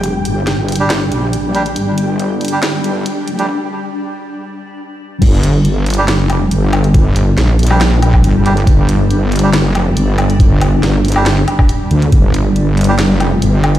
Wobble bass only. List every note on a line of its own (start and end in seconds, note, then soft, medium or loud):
0.00 0.24 F1 medium
0.25 1.10 G1 medium
1.12 1.75 A#1 loud
1.76 3.04 G1 loud
3.28 3.49 F1 medium
5.22 6.12 G1 loud
6.12 6.38 F#1 loud
6.38 6.50 F1 loud
6.51 7.36 G1 medium
7.38 8.22 A#1 loud
8.24 8.66 G1 loud
8.67 9.57 G1 loud
9.57 9.83 F#1 loud
9.83 9.95 F1 loud
9.97 10.81 G1 loud
10.83 11.46 G1 medium
11.91 12.11 D2 loud
12.12 13.03 G1 loud
13.03 13.29 F#1 loud
13.29 13.40 F1 loud
13.42 13.79 G1 loud